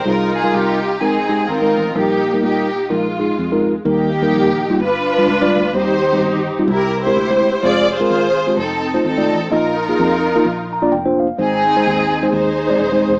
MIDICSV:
0, 0, Header, 1, 4, 480
1, 0, Start_track
1, 0, Key_signature, -3, "major"
1, 0, Tempo, 471698
1, 60, Time_signature, 4, 2, 24, 8
1, 13428, End_track
2, 0, Start_track
2, 0, Title_t, "String section"
2, 0, Program_c, 0, 48
2, 73, Note_on_c, 0, 63, 69
2, 77, Note_on_c, 0, 65, 72
2, 82, Note_on_c, 0, 70, 94
2, 362, Note_off_c, 0, 70, 0
2, 367, Note_on_c, 0, 68, 88
2, 529, Note_off_c, 0, 63, 0
2, 538, Note_off_c, 0, 68, 0
2, 541, Note_on_c, 0, 63, 65
2, 545, Note_on_c, 0, 67, 92
2, 991, Note_off_c, 0, 63, 0
2, 993, Note_off_c, 0, 65, 0
2, 1020, Note_on_c, 0, 60, 66
2, 1020, Note_on_c, 0, 63, 60
2, 1020, Note_on_c, 0, 68, 81
2, 1026, Note_off_c, 0, 67, 0
2, 1502, Note_off_c, 0, 63, 0
2, 1505, Note_off_c, 0, 68, 0
2, 1513, Note_on_c, 0, 65, 64
2, 1515, Note_on_c, 0, 63, 64
2, 1518, Note_on_c, 0, 70, 86
2, 1947, Note_off_c, 0, 60, 0
2, 1959, Note_off_c, 0, 65, 0
2, 1960, Note_off_c, 0, 63, 0
2, 1996, Note_off_c, 0, 70, 0
2, 2001, Note_on_c, 0, 67, 82
2, 2008, Note_on_c, 0, 58, 61
2, 2012, Note_on_c, 0, 63, 61
2, 2445, Note_off_c, 0, 67, 0
2, 2465, Note_off_c, 0, 63, 0
2, 2466, Note_off_c, 0, 58, 0
2, 2476, Note_on_c, 0, 67, 81
2, 2477, Note_on_c, 0, 63, 60
2, 2478, Note_on_c, 0, 58, 59
2, 2923, Note_off_c, 0, 63, 0
2, 2923, Note_off_c, 0, 67, 0
2, 2924, Note_off_c, 0, 58, 0
2, 2971, Note_on_c, 0, 65, 67
2, 2976, Note_on_c, 0, 56, 53
2, 3735, Note_off_c, 0, 65, 0
2, 3888, Note_off_c, 0, 56, 0
2, 3932, Note_on_c, 0, 58, 63
2, 3934, Note_on_c, 0, 63, 60
2, 3940, Note_on_c, 0, 67, 90
2, 4847, Note_off_c, 0, 58, 0
2, 4848, Note_off_c, 0, 63, 0
2, 4851, Note_off_c, 0, 67, 0
2, 4904, Note_on_c, 0, 71, 95
2, 4910, Note_on_c, 0, 62, 70
2, 4910, Note_on_c, 0, 65, 73
2, 5816, Note_off_c, 0, 62, 0
2, 5816, Note_off_c, 0, 65, 0
2, 5850, Note_on_c, 0, 72, 106
2, 5853, Note_on_c, 0, 67, 79
2, 5854, Note_off_c, 0, 71, 0
2, 5861, Note_on_c, 0, 63, 75
2, 6576, Note_off_c, 0, 72, 0
2, 6767, Note_off_c, 0, 67, 0
2, 6771, Note_off_c, 0, 63, 0
2, 6818, Note_on_c, 0, 64, 67
2, 6820, Note_on_c, 0, 67, 68
2, 6837, Note_on_c, 0, 70, 94
2, 7090, Note_off_c, 0, 70, 0
2, 7099, Note_off_c, 0, 67, 0
2, 7101, Note_off_c, 0, 64, 0
2, 7112, Note_on_c, 0, 67, 75
2, 7113, Note_on_c, 0, 64, 77
2, 7129, Note_on_c, 0, 72, 112
2, 7731, Note_off_c, 0, 67, 0
2, 7732, Note_off_c, 0, 64, 0
2, 7771, Note_on_c, 0, 65, 81
2, 7771, Note_on_c, 0, 68, 83
2, 7778, Note_on_c, 0, 74, 110
2, 7781, Note_off_c, 0, 72, 0
2, 8041, Note_off_c, 0, 65, 0
2, 8043, Note_off_c, 0, 68, 0
2, 8054, Note_on_c, 0, 65, 79
2, 8055, Note_on_c, 0, 68, 81
2, 8059, Note_off_c, 0, 74, 0
2, 8061, Note_on_c, 0, 72, 118
2, 8681, Note_off_c, 0, 65, 0
2, 8682, Note_off_c, 0, 68, 0
2, 8685, Note_off_c, 0, 72, 0
2, 8728, Note_on_c, 0, 63, 66
2, 8731, Note_on_c, 0, 69, 92
2, 8735, Note_on_c, 0, 60, 64
2, 9194, Note_off_c, 0, 60, 0
2, 9197, Note_off_c, 0, 63, 0
2, 9199, Note_off_c, 0, 69, 0
2, 9206, Note_on_c, 0, 60, 66
2, 9209, Note_on_c, 0, 63, 70
2, 9211, Note_on_c, 0, 69, 93
2, 9648, Note_off_c, 0, 60, 0
2, 9650, Note_off_c, 0, 63, 0
2, 9651, Note_off_c, 0, 69, 0
2, 9692, Note_on_c, 0, 65, 66
2, 9694, Note_on_c, 0, 70, 95
2, 9699, Note_on_c, 0, 63, 71
2, 11078, Note_off_c, 0, 65, 0
2, 11082, Note_off_c, 0, 63, 0
2, 11120, Note_off_c, 0, 70, 0
2, 11606, Note_on_c, 0, 60, 62
2, 11607, Note_on_c, 0, 63, 66
2, 11607, Note_on_c, 0, 68, 95
2, 12511, Note_off_c, 0, 60, 0
2, 12511, Note_off_c, 0, 63, 0
2, 12511, Note_off_c, 0, 68, 0
2, 12550, Note_on_c, 0, 68, 72
2, 12554, Note_on_c, 0, 63, 71
2, 12570, Note_on_c, 0, 72, 94
2, 13428, Note_off_c, 0, 63, 0
2, 13428, Note_off_c, 0, 68, 0
2, 13428, Note_off_c, 0, 72, 0
2, 13428, End_track
3, 0, Start_track
3, 0, Title_t, "Tine electric piano"
3, 0, Program_c, 1, 4
3, 53, Note_on_c, 1, 55, 66
3, 55, Note_on_c, 1, 65, 62
3, 56, Note_on_c, 1, 48, 60
3, 59, Note_on_c, 1, 68, 75
3, 60, Note_on_c, 1, 63, 64
3, 297, Note_off_c, 1, 55, 0
3, 298, Note_off_c, 1, 65, 0
3, 300, Note_off_c, 1, 68, 0
3, 301, Note_off_c, 1, 63, 0
3, 444, Note_on_c, 1, 55, 65
3, 446, Note_on_c, 1, 63, 63
3, 447, Note_on_c, 1, 70, 76
3, 449, Note_on_c, 1, 65, 62
3, 791, Note_off_c, 1, 48, 0
3, 797, Note_off_c, 1, 55, 0
3, 798, Note_off_c, 1, 63, 0
3, 799, Note_off_c, 1, 70, 0
3, 800, Note_off_c, 1, 65, 0
3, 1029, Note_on_c, 1, 46, 59
3, 1029, Note_on_c, 1, 56, 66
3, 1030, Note_on_c, 1, 60, 61
3, 1030, Note_on_c, 1, 63, 62
3, 1032, Note_on_c, 1, 70, 72
3, 1187, Note_off_c, 1, 56, 0
3, 1188, Note_off_c, 1, 60, 0
3, 1188, Note_off_c, 1, 63, 0
3, 1189, Note_off_c, 1, 70, 0
3, 1314, Note_on_c, 1, 56, 69
3, 1314, Note_on_c, 1, 63, 62
3, 1317, Note_on_c, 1, 60, 61
3, 1317, Note_on_c, 1, 67, 76
3, 1474, Note_off_c, 1, 56, 0
3, 1474, Note_off_c, 1, 63, 0
3, 1475, Note_off_c, 1, 60, 0
3, 1475, Note_off_c, 1, 67, 0
3, 1646, Note_on_c, 1, 63, 61
3, 1647, Note_on_c, 1, 56, 67
3, 1648, Note_on_c, 1, 70, 75
3, 1651, Note_on_c, 1, 60, 61
3, 1760, Note_off_c, 1, 46, 0
3, 1858, Note_off_c, 1, 56, 0
3, 1858, Note_off_c, 1, 63, 0
3, 1859, Note_off_c, 1, 70, 0
3, 1860, Note_off_c, 1, 60, 0
3, 1990, Note_on_c, 1, 58, 63
3, 1991, Note_on_c, 1, 46, 61
3, 1991, Note_on_c, 1, 55, 67
3, 1992, Note_on_c, 1, 70, 74
3, 1993, Note_on_c, 1, 63, 62
3, 2231, Note_off_c, 1, 55, 0
3, 2231, Note_off_c, 1, 58, 0
3, 2232, Note_off_c, 1, 63, 0
3, 2232, Note_off_c, 1, 70, 0
3, 2372, Note_on_c, 1, 55, 66
3, 2377, Note_on_c, 1, 58, 61
3, 2377, Note_on_c, 1, 70, 73
3, 2378, Note_on_c, 1, 63, 59
3, 2723, Note_off_c, 1, 46, 0
3, 2726, Note_off_c, 1, 55, 0
3, 2728, Note_off_c, 1, 58, 0
3, 2728, Note_off_c, 1, 70, 0
3, 2729, Note_off_c, 1, 63, 0
3, 2947, Note_on_c, 1, 56, 65
3, 2950, Note_on_c, 1, 65, 61
3, 2952, Note_on_c, 1, 46, 54
3, 2952, Note_on_c, 1, 63, 58
3, 2952, Note_on_c, 1, 70, 72
3, 3111, Note_off_c, 1, 56, 0
3, 3113, Note_off_c, 1, 65, 0
3, 3114, Note_off_c, 1, 63, 0
3, 3114, Note_off_c, 1, 70, 0
3, 3245, Note_on_c, 1, 56, 64
3, 3245, Note_on_c, 1, 65, 60
3, 3248, Note_on_c, 1, 63, 62
3, 3250, Note_on_c, 1, 68, 72
3, 3404, Note_off_c, 1, 56, 0
3, 3404, Note_off_c, 1, 65, 0
3, 3405, Note_off_c, 1, 63, 0
3, 3406, Note_off_c, 1, 68, 0
3, 3578, Note_on_c, 1, 63, 66
3, 3583, Note_on_c, 1, 56, 75
3, 3583, Note_on_c, 1, 70, 89
3, 3585, Note_on_c, 1, 65, 68
3, 3685, Note_off_c, 1, 46, 0
3, 3788, Note_off_c, 1, 63, 0
3, 3790, Note_off_c, 1, 56, 0
3, 3791, Note_off_c, 1, 65, 0
3, 3791, Note_off_c, 1, 70, 0
3, 3917, Note_on_c, 1, 55, 76
3, 3917, Note_on_c, 1, 58, 64
3, 3918, Note_on_c, 1, 51, 59
3, 3918, Note_on_c, 1, 63, 64
3, 3922, Note_on_c, 1, 70, 81
3, 4158, Note_off_c, 1, 55, 0
3, 4158, Note_off_c, 1, 58, 0
3, 4159, Note_off_c, 1, 63, 0
3, 4161, Note_off_c, 1, 70, 0
3, 4294, Note_on_c, 1, 55, 70
3, 4295, Note_on_c, 1, 58, 66
3, 4300, Note_on_c, 1, 63, 65
3, 4300, Note_on_c, 1, 70, 78
3, 4570, Note_off_c, 1, 55, 0
3, 4570, Note_off_c, 1, 58, 0
3, 4573, Note_off_c, 1, 63, 0
3, 4573, Note_off_c, 1, 70, 0
3, 4649, Note_off_c, 1, 51, 0
3, 4779, Note_on_c, 1, 55, 78
3, 4782, Note_on_c, 1, 63, 71
3, 4782, Note_on_c, 1, 65, 84
3, 4783, Note_on_c, 1, 58, 70
3, 4878, Note_off_c, 1, 55, 0
3, 4879, Note_off_c, 1, 63, 0
3, 4879, Note_off_c, 1, 65, 0
3, 4880, Note_off_c, 1, 58, 0
3, 4886, Note_on_c, 1, 43, 59
3, 5273, Note_on_c, 1, 62, 68
3, 5274, Note_on_c, 1, 55, 74
3, 5274, Note_on_c, 1, 71, 82
3, 5277, Note_on_c, 1, 65, 65
3, 5380, Note_off_c, 1, 62, 0
3, 5381, Note_off_c, 1, 55, 0
3, 5381, Note_off_c, 1, 71, 0
3, 5382, Note_off_c, 1, 65, 0
3, 5506, Note_on_c, 1, 62, 80
3, 5511, Note_on_c, 1, 55, 87
3, 5514, Note_on_c, 1, 74, 99
3, 5515, Note_on_c, 1, 65, 79
3, 5613, Note_off_c, 1, 43, 0
3, 5714, Note_off_c, 1, 62, 0
3, 5716, Note_off_c, 1, 55, 0
3, 5718, Note_off_c, 1, 65, 0
3, 5718, Note_off_c, 1, 74, 0
3, 5847, Note_on_c, 1, 51, 68
3, 5847, Note_on_c, 1, 60, 65
3, 5848, Note_on_c, 1, 63, 67
3, 5849, Note_on_c, 1, 55, 74
3, 5849, Note_on_c, 1, 72, 84
3, 6084, Note_off_c, 1, 60, 0
3, 6085, Note_off_c, 1, 55, 0
3, 6085, Note_off_c, 1, 63, 0
3, 6086, Note_off_c, 1, 72, 0
3, 6230, Note_on_c, 1, 55, 70
3, 6233, Note_on_c, 1, 60, 68
3, 6235, Note_on_c, 1, 63, 65
3, 6238, Note_on_c, 1, 67, 80
3, 6499, Note_off_c, 1, 55, 0
3, 6500, Note_off_c, 1, 60, 0
3, 6501, Note_off_c, 1, 63, 0
3, 6503, Note_off_c, 1, 67, 0
3, 6574, Note_off_c, 1, 51, 0
3, 6703, Note_on_c, 1, 55, 72
3, 6704, Note_on_c, 1, 60, 69
3, 6705, Note_on_c, 1, 63, 68
3, 6707, Note_on_c, 1, 65, 82
3, 6801, Note_off_c, 1, 55, 0
3, 6801, Note_off_c, 1, 60, 0
3, 6801, Note_off_c, 1, 63, 0
3, 6803, Note_off_c, 1, 65, 0
3, 6809, Note_on_c, 1, 48, 63
3, 7190, Note_on_c, 1, 56, 74
3, 7190, Note_on_c, 1, 60, 70
3, 7191, Note_on_c, 1, 64, 71
3, 7192, Note_on_c, 1, 70, 84
3, 7299, Note_off_c, 1, 56, 0
3, 7299, Note_off_c, 1, 60, 0
3, 7300, Note_off_c, 1, 64, 0
3, 7300, Note_off_c, 1, 70, 0
3, 7430, Note_on_c, 1, 56, 72
3, 7432, Note_on_c, 1, 60, 65
3, 7434, Note_on_c, 1, 64, 65
3, 7435, Note_on_c, 1, 72, 84
3, 7534, Note_off_c, 1, 48, 0
3, 7636, Note_off_c, 1, 56, 0
3, 7637, Note_off_c, 1, 60, 0
3, 7638, Note_off_c, 1, 64, 0
3, 7638, Note_off_c, 1, 72, 0
3, 7763, Note_on_c, 1, 56, 75
3, 7764, Note_on_c, 1, 65, 70
3, 7768, Note_on_c, 1, 72, 84
3, 7770, Note_on_c, 1, 60, 73
3, 8002, Note_off_c, 1, 56, 0
3, 8003, Note_off_c, 1, 65, 0
3, 8005, Note_off_c, 1, 60, 0
3, 8005, Note_off_c, 1, 72, 0
3, 8138, Note_on_c, 1, 60, 70
3, 8140, Note_on_c, 1, 56, 76
3, 8141, Note_on_c, 1, 65, 70
3, 8146, Note_on_c, 1, 70, 81
3, 8412, Note_off_c, 1, 60, 0
3, 8413, Note_off_c, 1, 56, 0
3, 8413, Note_off_c, 1, 65, 0
3, 8416, Note_off_c, 1, 70, 0
3, 8619, Note_on_c, 1, 60, 70
3, 8622, Note_on_c, 1, 56, 71
3, 8624, Note_on_c, 1, 65, 70
3, 8625, Note_on_c, 1, 67, 81
3, 8717, Note_off_c, 1, 60, 0
3, 8719, Note_off_c, 1, 56, 0
3, 8720, Note_off_c, 1, 65, 0
3, 8720, Note_off_c, 1, 67, 0
3, 9100, Note_on_c, 1, 57, 73
3, 9100, Note_on_c, 1, 72, 81
3, 9101, Note_on_c, 1, 63, 66
3, 9103, Note_on_c, 1, 65, 71
3, 9212, Note_off_c, 1, 57, 0
3, 9212, Note_off_c, 1, 72, 0
3, 9213, Note_off_c, 1, 63, 0
3, 9214, Note_off_c, 1, 65, 0
3, 9336, Note_on_c, 1, 57, 75
3, 9337, Note_on_c, 1, 63, 65
3, 9337, Note_on_c, 1, 74, 78
3, 9339, Note_on_c, 1, 65, 65
3, 9547, Note_off_c, 1, 57, 0
3, 9547, Note_off_c, 1, 63, 0
3, 9547, Note_off_c, 1, 74, 0
3, 9548, Note_off_c, 1, 65, 0
3, 9675, Note_on_c, 1, 58, 74
3, 9676, Note_on_c, 1, 63, 69
3, 9679, Note_on_c, 1, 65, 67
3, 9680, Note_on_c, 1, 46, 65
3, 9683, Note_on_c, 1, 75, 84
3, 9915, Note_off_c, 1, 58, 0
3, 9916, Note_off_c, 1, 63, 0
3, 9917, Note_off_c, 1, 65, 0
3, 9919, Note_off_c, 1, 75, 0
3, 10058, Note_on_c, 1, 58, 70
3, 10063, Note_on_c, 1, 63, 65
3, 10063, Note_on_c, 1, 65, 67
3, 10065, Note_on_c, 1, 68, 80
3, 10328, Note_off_c, 1, 58, 0
3, 10331, Note_off_c, 1, 63, 0
3, 10331, Note_off_c, 1, 65, 0
3, 10332, Note_off_c, 1, 68, 0
3, 10405, Note_off_c, 1, 46, 0
3, 10536, Note_on_c, 1, 63, 81
3, 10537, Note_on_c, 1, 58, 88
3, 10539, Note_on_c, 1, 65, 83
3, 10539, Note_on_c, 1, 70, 96
3, 10633, Note_off_c, 1, 58, 0
3, 10633, Note_off_c, 1, 63, 0
3, 10634, Note_off_c, 1, 65, 0
3, 10634, Note_off_c, 1, 70, 0
3, 10637, Note_on_c, 1, 46, 74
3, 10916, Note_on_c, 1, 82, 67
3, 11009, Note_on_c, 1, 62, 78
3, 11009, Note_on_c, 1, 65, 84
3, 11011, Note_on_c, 1, 58, 83
3, 11015, Note_on_c, 1, 74, 101
3, 11096, Note_off_c, 1, 82, 0
3, 11112, Note_on_c, 1, 79, 71
3, 11123, Note_off_c, 1, 62, 0
3, 11123, Note_off_c, 1, 65, 0
3, 11124, Note_off_c, 1, 58, 0
3, 11126, Note_off_c, 1, 74, 0
3, 11247, Note_on_c, 1, 62, 76
3, 11248, Note_on_c, 1, 65, 74
3, 11249, Note_on_c, 1, 58, 81
3, 11250, Note_on_c, 1, 72, 93
3, 11360, Note_off_c, 1, 46, 0
3, 11379, Note_off_c, 1, 79, 0
3, 11393, Note_on_c, 1, 77, 70
3, 11457, Note_off_c, 1, 62, 0
3, 11458, Note_off_c, 1, 58, 0
3, 11458, Note_off_c, 1, 65, 0
3, 11459, Note_off_c, 1, 72, 0
3, 11572, Note_off_c, 1, 77, 0
3, 11584, Note_on_c, 1, 56, 74
3, 11584, Note_on_c, 1, 60, 67
3, 11586, Note_on_c, 1, 44, 62
3, 11587, Note_on_c, 1, 72, 78
3, 11588, Note_on_c, 1, 63, 65
3, 11825, Note_off_c, 1, 56, 0
3, 11825, Note_off_c, 1, 60, 0
3, 11826, Note_off_c, 1, 72, 0
3, 11827, Note_off_c, 1, 63, 0
3, 11969, Note_on_c, 1, 56, 75
3, 11969, Note_on_c, 1, 60, 65
3, 11972, Note_on_c, 1, 63, 67
3, 11972, Note_on_c, 1, 72, 79
3, 12238, Note_off_c, 1, 56, 0
3, 12239, Note_off_c, 1, 60, 0
3, 12240, Note_off_c, 1, 63, 0
3, 12240, Note_off_c, 1, 72, 0
3, 12311, Note_off_c, 1, 44, 0
3, 12436, Note_on_c, 1, 56, 70
3, 12437, Note_on_c, 1, 60, 70
3, 12438, Note_on_c, 1, 63, 69
3, 12444, Note_on_c, 1, 72, 84
3, 12710, Note_off_c, 1, 56, 0
3, 12711, Note_off_c, 1, 60, 0
3, 12712, Note_off_c, 1, 63, 0
3, 12715, Note_off_c, 1, 72, 0
3, 12916, Note_on_c, 1, 60, 68
3, 12918, Note_on_c, 1, 63, 67
3, 12919, Note_on_c, 1, 56, 79
3, 12920, Note_on_c, 1, 74, 88
3, 13030, Note_off_c, 1, 60, 0
3, 13031, Note_off_c, 1, 56, 0
3, 13031, Note_off_c, 1, 63, 0
3, 13032, Note_off_c, 1, 74, 0
3, 13146, Note_on_c, 1, 56, 87
3, 13146, Note_on_c, 1, 60, 78
3, 13146, Note_on_c, 1, 63, 78
3, 13149, Note_on_c, 1, 72, 94
3, 13360, Note_off_c, 1, 56, 0
3, 13360, Note_off_c, 1, 60, 0
3, 13360, Note_off_c, 1, 63, 0
3, 13362, Note_off_c, 1, 72, 0
3, 13428, End_track
4, 0, Start_track
4, 0, Title_t, "Fingered electric bass"
4, 0, Program_c, 2, 33
4, 56, Note_on_c, 2, 36, 87
4, 468, Note_off_c, 2, 36, 0
4, 544, Note_on_c, 2, 36, 83
4, 1013, Note_off_c, 2, 36, 0
4, 1013, Note_on_c, 2, 34, 92
4, 1429, Note_off_c, 2, 34, 0
4, 1512, Note_on_c, 2, 32, 80
4, 1757, Note_off_c, 2, 32, 0
4, 1795, Note_on_c, 2, 33, 83
4, 1959, Note_off_c, 2, 33, 0
4, 1987, Note_on_c, 2, 34, 95
4, 2398, Note_off_c, 2, 34, 0
4, 2472, Note_on_c, 2, 46, 86
4, 2958, Note_on_c, 2, 34, 91
4, 2973, Note_off_c, 2, 46, 0
4, 3366, Note_off_c, 2, 34, 0
4, 3441, Note_on_c, 2, 41, 78
4, 3849, Note_off_c, 2, 41, 0
4, 3920, Note_on_c, 2, 39, 92
4, 4329, Note_off_c, 2, 39, 0
4, 4399, Note_on_c, 2, 34, 92
4, 4808, Note_off_c, 2, 34, 0
4, 4882, Note_on_c, 2, 31, 93
4, 5290, Note_off_c, 2, 31, 0
4, 5356, Note_on_c, 2, 37, 82
4, 5605, Note_off_c, 2, 37, 0
4, 5654, Note_on_c, 2, 38, 81
4, 5815, Note_off_c, 2, 38, 0
4, 5833, Note_on_c, 2, 39, 98
4, 6245, Note_off_c, 2, 39, 0
4, 6318, Note_on_c, 2, 31, 96
4, 6728, Note_off_c, 2, 31, 0
4, 6795, Note_on_c, 2, 36, 112
4, 7206, Note_off_c, 2, 36, 0
4, 7280, Note_on_c, 2, 38, 86
4, 7689, Note_off_c, 2, 38, 0
4, 7765, Note_on_c, 2, 29, 97
4, 8172, Note_off_c, 2, 29, 0
4, 8245, Note_on_c, 2, 32, 100
4, 8651, Note_off_c, 2, 32, 0
4, 8720, Note_on_c, 2, 29, 103
4, 9127, Note_off_c, 2, 29, 0
4, 9205, Note_on_c, 2, 32, 94
4, 9448, Note_off_c, 2, 32, 0
4, 9496, Note_on_c, 2, 33, 86
4, 9654, Note_off_c, 2, 33, 0
4, 9690, Note_on_c, 2, 34, 102
4, 10092, Note_off_c, 2, 34, 0
4, 10164, Note_on_c, 2, 41, 97
4, 10567, Note_off_c, 2, 41, 0
4, 10633, Note_on_c, 2, 34, 98
4, 11112, Note_on_c, 2, 29, 85
4, 11127, Note_off_c, 2, 34, 0
4, 11518, Note_off_c, 2, 29, 0
4, 11590, Note_on_c, 2, 32, 94
4, 11995, Note_off_c, 2, 32, 0
4, 12076, Note_on_c, 2, 39, 96
4, 12477, Note_off_c, 2, 39, 0
4, 12542, Note_on_c, 2, 39, 96
4, 12947, Note_off_c, 2, 39, 0
4, 13017, Note_on_c, 2, 27, 97
4, 13262, Note_off_c, 2, 27, 0
4, 13305, Note_on_c, 2, 28, 80
4, 13428, Note_off_c, 2, 28, 0
4, 13428, End_track
0, 0, End_of_file